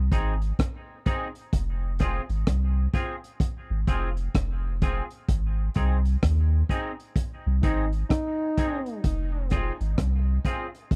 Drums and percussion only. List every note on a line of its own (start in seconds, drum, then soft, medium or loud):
0.12 kick medium
0.12 closed hi-hat medium
0.42 closed hi-hat medium
0.59 kick loud
0.59 cross-stick loud
0.59 closed hi-hat medium
1.06 kick medium
1.06 closed hi-hat medium
1.35 closed hi-hat soft
1.53 kick loud
1.53 closed hi-hat loud
1.99 kick medium
1.99 cross-stick medium
1.99 closed hi-hat medium
2.29 closed hi-hat medium
2.47 kick loud
2.47 cross-stick loud
2.47 closed hi-hat loud
2.94 kick medium
2.94 closed hi-hat medium
3.24 closed hi-hat soft
3.40 kick loud
3.40 closed hi-hat medium
3.87 kick medium
3.87 closed hi-hat medium
4.17 closed hi-hat medium
4.35 kick loud
4.35 cross-stick loud
4.35 closed hi-hat medium
4.82 kick loud
4.82 closed hi-hat medium
5.10 closed hi-hat soft
5.28 kick loud
5.28 closed hi-hat medium
5.74 kick medium
5.74 closed hi-hat medium
6.05 closed hi-hat medium
6.23 kick loud
6.23 cross-stick loud
6.23 closed hi-hat medium
6.69 kick medium
6.69 closed hi-hat medium
7.00 closed hi-hat soft
7.16 kick loud
7.16 closed hi-hat medium
7.63 kick loud
7.63 closed hi-hat medium
7.93 closed hi-hat soft
8.10 kick loud
8.10 cross-stick medium
8.10 closed hi-hat medium
8.58 kick medium
8.58 closed hi-hat medium
8.86 closed hi-hat soft
9.04 kick loud
9.04 closed hi-hat medium
9.50 kick medium
9.50 cross-stick medium
9.50 closed hi-hat medium
9.81 closed hi-hat medium
9.98 kick loud
9.98 cross-stick medium
9.98 closed hi-hat loud
10.45 kick medium
10.45 closed hi-hat medium
10.75 closed hi-hat soft
10.91 kick loud
10.91 closed hi-hat medium